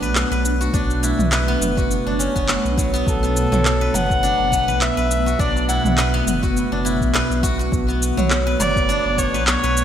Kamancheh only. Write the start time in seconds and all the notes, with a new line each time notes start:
3.07 A4
3.94 F#5
4.81 E5
5.39 D5
5.68 F#5
8.60 D5
9.18 C#5
9.47 C#5